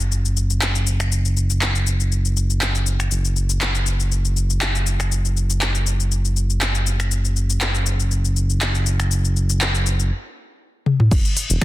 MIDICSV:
0, 0, Header, 1, 3, 480
1, 0, Start_track
1, 0, Tempo, 500000
1, 1068, Time_signature, 4, 2, 24, 8
1, 11180, End_track
2, 0, Start_track
2, 0, Title_t, "Analog synth bass"
2, 0, Program_c, 0, 38
2, 0, Note_on_c, 0, 30, 83
2, 2965, Note_off_c, 0, 30, 0
2, 2989, Note_on_c, 0, 30, 88
2, 9709, Note_off_c, 0, 30, 0
2, 10669, Note_on_c, 0, 30, 97
2, 10753, Note_off_c, 0, 30, 0
2, 11036, Note_on_c, 0, 28, 96
2, 11110, Note_off_c, 0, 28, 0
2, 11180, End_track
3, 0, Start_track
3, 0, Title_t, "Drums"
3, 2, Note_on_c, 9, 82, 46
3, 98, Note_off_c, 9, 82, 0
3, 114, Note_on_c, 9, 82, 49
3, 210, Note_off_c, 9, 82, 0
3, 243, Note_on_c, 9, 82, 51
3, 339, Note_off_c, 9, 82, 0
3, 353, Note_on_c, 9, 82, 51
3, 449, Note_off_c, 9, 82, 0
3, 483, Note_on_c, 9, 82, 51
3, 579, Note_off_c, 9, 82, 0
3, 593, Note_on_c, 9, 26, 98
3, 593, Note_on_c, 9, 39, 87
3, 594, Note_on_c, 9, 82, 88
3, 689, Note_off_c, 9, 26, 0
3, 689, Note_off_c, 9, 39, 0
3, 690, Note_off_c, 9, 82, 0
3, 722, Note_on_c, 9, 82, 48
3, 818, Note_off_c, 9, 82, 0
3, 833, Note_on_c, 9, 82, 88
3, 929, Note_off_c, 9, 82, 0
3, 960, Note_on_c, 9, 26, 59
3, 962, Note_on_c, 9, 82, 48
3, 1056, Note_off_c, 9, 26, 0
3, 1058, Note_off_c, 9, 82, 0
3, 1074, Note_on_c, 9, 82, 87
3, 1170, Note_off_c, 9, 82, 0
3, 1202, Note_on_c, 9, 82, 49
3, 1298, Note_off_c, 9, 82, 0
3, 1313, Note_on_c, 9, 82, 48
3, 1409, Note_off_c, 9, 82, 0
3, 1441, Note_on_c, 9, 82, 89
3, 1537, Note_off_c, 9, 82, 0
3, 1553, Note_on_c, 9, 26, 98
3, 1553, Note_on_c, 9, 39, 90
3, 1554, Note_on_c, 9, 82, 51
3, 1649, Note_off_c, 9, 26, 0
3, 1649, Note_off_c, 9, 39, 0
3, 1650, Note_off_c, 9, 82, 0
3, 1683, Note_on_c, 9, 82, 50
3, 1779, Note_off_c, 9, 82, 0
3, 1793, Note_on_c, 9, 82, 88
3, 1889, Note_off_c, 9, 82, 0
3, 1921, Note_on_c, 9, 82, 48
3, 2017, Note_off_c, 9, 82, 0
3, 2034, Note_on_c, 9, 82, 47
3, 2130, Note_off_c, 9, 82, 0
3, 2162, Note_on_c, 9, 82, 49
3, 2258, Note_off_c, 9, 82, 0
3, 2273, Note_on_c, 9, 82, 53
3, 2369, Note_off_c, 9, 82, 0
3, 2402, Note_on_c, 9, 82, 50
3, 2498, Note_off_c, 9, 82, 0
3, 2510, Note_on_c, 9, 26, 95
3, 2510, Note_on_c, 9, 39, 91
3, 2511, Note_on_c, 9, 82, 85
3, 2606, Note_off_c, 9, 26, 0
3, 2606, Note_off_c, 9, 39, 0
3, 2607, Note_off_c, 9, 82, 0
3, 2641, Note_on_c, 9, 82, 47
3, 2737, Note_off_c, 9, 82, 0
3, 2750, Note_on_c, 9, 82, 87
3, 2846, Note_off_c, 9, 82, 0
3, 2879, Note_on_c, 9, 26, 54
3, 2880, Note_on_c, 9, 82, 49
3, 2975, Note_off_c, 9, 26, 0
3, 2976, Note_off_c, 9, 82, 0
3, 2988, Note_on_c, 9, 82, 90
3, 3084, Note_off_c, 9, 82, 0
3, 3118, Note_on_c, 9, 82, 51
3, 3214, Note_off_c, 9, 82, 0
3, 3229, Note_on_c, 9, 82, 46
3, 3325, Note_off_c, 9, 82, 0
3, 3356, Note_on_c, 9, 82, 87
3, 3452, Note_off_c, 9, 82, 0
3, 3469, Note_on_c, 9, 26, 94
3, 3469, Note_on_c, 9, 39, 91
3, 3470, Note_on_c, 9, 82, 48
3, 3565, Note_off_c, 9, 26, 0
3, 3565, Note_off_c, 9, 39, 0
3, 3566, Note_off_c, 9, 82, 0
3, 3598, Note_on_c, 9, 82, 50
3, 3694, Note_off_c, 9, 82, 0
3, 3709, Note_on_c, 9, 82, 81
3, 3805, Note_off_c, 9, 82, 0
3, 3839, Note_on_c, 9, 82, 47
3, 3935, Note_off_c, 9, 82, 0
3, 3952, Note_on_c, 9, 82, 48
3, 4048, Note_off_c, 9, 82, 0
3, 4080, Note_on_c, 9, 82, 51
3, 4176, Note_off_c, 9, 82, 0
3, 4191, Note_on_c, 9, 82, 52
3, 4287, Note_off_c, 9, 82, 0
3, 4321, Note_on_c, 9, 82, 48
3, 4417, Note_off_c, 9, 82, 0
3, 4430, Note_on_c, 9, 26, 94
3, 4430, Note_on_c, 9, 39, 95
3, 4431, Note_on_c, 9, 82, 82
3, 4526, Note_off_c, 9, 26, 0
3, 4526, Note_off_c, 9, 39, 0
3, 4527, Note_off_c, 9, 82, 0
3, 4562, Note_on_c, 9, 82, 46
3, 4658, Note_off_c, 9, 82, 0
3, 4670, Note_on_c, 9, 82, 86
3, 4766, Note_off_c, 9, 82, 0
3, 4798, Note_on_c, 9, 26, 55
3, 4799, Note_on_c, 9, 82, 49
3, 4894, Note_off_c, 9, 26, 0
3, 4895, Note_off_c, 9, 82, 0
3, 4912, Note_on_c, 9, 82, 82
3, 5008, Note_off_c, 9, 82, 0
3, 5041, Note_on_c, 9, 82, 49
3, 5137, Note_off_c, 9, 82, 0
3, 5153, Note_on_c, 9, 82, 48
3, 5249, Note_off_c, 9, 82, 0
3, 5280, Note_on_c, 9, 82, 87
3, 5376, Note_off_c, 9, 82, 0
3, 5390, Note_on_c, 9, 26, 96
3, 5390, Note_on_c, 9, 39, 97
3, 5391, Note_on_c, 9, 82, 47
3, 5486, Note_off_c, 9, 26, 0
3, 5486, Note_off_c, 9, 39, 0
3, 5487, Note_off_c, 9, 82, 0
3, 5519, Note_on_c, 9, 82, 46
3, 5615, Note_off_c, 9, 82, 0
3, 5631, Note_on_c, 9, 82, 81
3, 5727, Note_off_c, 9, 82, 0
3, 5761, Note_on_c, 9, 82, 47
3, 5857, Note_off_c, 9, 82, 0
3, 5871, Note_on_c, 9, 82, 45
3, 5967, Note_off_c, 9, 82, 0
3, 6000, Note_on_c, 9, 82, 46
3, 6096, Note_off_c, 9, 82, 0
3, 6110, Note_on_c, 9, 82, 47
3, 6206, Note_off_c, 9, 82, 0
3, 6240, Note_on_c, 9, 82, 48
3, 6336, Note_off_c, 9, 82, 0
3, 6349, Note_on_c, 9, 26, 95
3, 6349, Note_on_c, 9, 39, 94
3, 6350, Note_on_c, 9, 82, 84
3, 6445, Note_off_c, 9, 26, 0
3, 6445, Note_off_c, 9, 39, 0
3, 6446, Note_off_c, 9, 82, 0
3, 6479, Note_on_c, 9, 82, 45
3, 6575, Note_off_c, 9, 82, 0
3, 6590, Note_on_c, 9, 82, 81
3, 6686, Note_off_c, 9, 82, 0
3, 6718, Note_on_c, 9, 26, 52
3, 6719, Note_on_c, 9, 82, 47
3, 6814, Note_off_c, 9, 26, 0
3, 6815, Note_off_c, 9, 82, 0
3, 6829, Note_on_c, 9, 82, 86
3, 6925, Note_off_c, 9, 82, 0
3, 6958, Note_on_c, 9, 82, 47
3, 7054, Note_off_c, 9, 82, 0
3, 7069, Note_on_c, 9, 82, 44
3, 7165, Note_off_c, 9, 82, 0
3, 7198, Note_on_c, 9, 82, 82
3, 7294, Note_off_c, 9, 82, 0
3, 7307, Note_on_c, 9, 26, 95
3, 7307, Note_on_c, 9, 39, 99
3, 7308, Note_on_c, 9, 82, 45
3, 7403, Note_off_c, 9, 26, 0
3, 7403, Note_off_c, 9, 39, 0
3, 7404, Note_off_c, 9, 82, 0
3, 7436, Note_on_c, 9, 82, 49
3, 7532, Note_off_c, 9, 82, 0
3, 7548, Note_on_c, 9, 82, 83
3, 7644, Note_off_c, 9, 82, 0
3, 7677, Note_on_c, 9, 82, 47
3, 7773, Note_off_c, 9, 82, 0
3, 7789, Note_on_c, 9, 82, 44
3, 7885, Note_off_c, 9, 82, 0
3, 7918, Note_on_c, 9, 82, 49
3, 8014, Note_off_c, 9, 82, 0
3, 8030, Note_on_c, 9, 82, 48
3, 8126, Note_off_c, 9, 82, 0
3, 8158, Note_on_c, 9, 82, 46
3, 8254, Note_off_c, 9, 82, 0
3, 8269, Note_on_c, 9, 26, 98
3, 8269, Note_on_c, 9, 39, 103
3, 8270, Note_on_c, 9, 82, 83
3, 8365, Note_off_c, 9, 26, 0
3, 8365, Note_off_c, 9, 39, 0
3, 8366, Note_off_c, 9, 82, 0
3, 8398, Note_on_c, 9, 82, 44
3, 8494, Note_off_c, 9, 82, 0
3, 8508, Note_on_c, 9, 82, 77
3, 8604, Note_off_c, 9, 82, 0
3, 8636, Note_on_c, 9, 26, 57
3, 8637, Note_on_c, 9, 82, 48
3, 8732, Note_off_c, 9, 26, 0
3, 8733, Note_off_c, 9, 82, 0
3, 8748, Note_on_c, 9, 82, 85
3, 8844, Note_off_c, 9, 82, 0
3, 8877, Note_on_c, 9, 82, 52
3, 8973, Note_off_c, 9, 82, 0
3, 8990, Note_on_c, 9, 82, 43
3, 9086, Note_off_c, 9, 82, 0
3, 9117, Note_on_c, 9, 82, 82
3, 9213, Note_off_c, 9, 82, 0
3, 9228, Note_on_c, 9, 26, 96
3, 9228, Note_on_c, 9, 39, 99
3, 9229, Note_on_c, 9, 82, 48
3, 9324, Note_off_c, 9, 26, 0
3, 9324, Note_off_c, 9, 39, 0
3, 9325, Note_off_c, 9, 82, 0
3, 9356, Note_on_c, 9, 82, 49
3, 9452, Note_off_c, 9, 82, 0
3, 9468, Note_on_c, 9, 82, 79
3, 9564, Note_off_c, 9, 82, 0
3, 9597, Note_on_c, 9, 82, 43
3, 9693, Note_off_c, 9, 82, 0
3, 10428, Note_on_c, 9, 48, 59
3, 10524, Note_off_c, 9, 48, 0
3, 10558, Note_on_c, 9, 47, 65
3, 10654, Note_off_c, 9, 47, 0
3, 10670, Note_on_c, 9, 36, 126
3, 10671, Note_on_c, 9, 49, 105
3, 10672, Note_on_c, 9, 82, 90
3, 10766, Note_off_c, 9, 36, 0
3, 10767, Note_off_c, 9, 49, 0
3, 10768, Note_off_c, 9, 82, 0
3, 10801, Note_on_c, 9, 82, 54
3, 10897, Note_off_c, 9, 82, 0
3, 10911, Note_on_c, 9, 46, 91
3, 10912, Note_on_c, 9, 82, 50
3, 11007, Note_off_c, 9, 46, 0
3, 11008, Note_off_c, 9, 82, 0
3, 11040, Note_on_c, 9, 82, 95
3, 11136, Note_off_c, 9, 82, 0
3, 11150, Note_on_c, 9, 26, 109
3, 11151, Note_on_c, 9, 36, 114
3, 11180, Note_off_c, 9, 26, 0
3, 11180, Note_off_c, 9, 36, 0
3, 11180, End_track
0, 0, End_of_file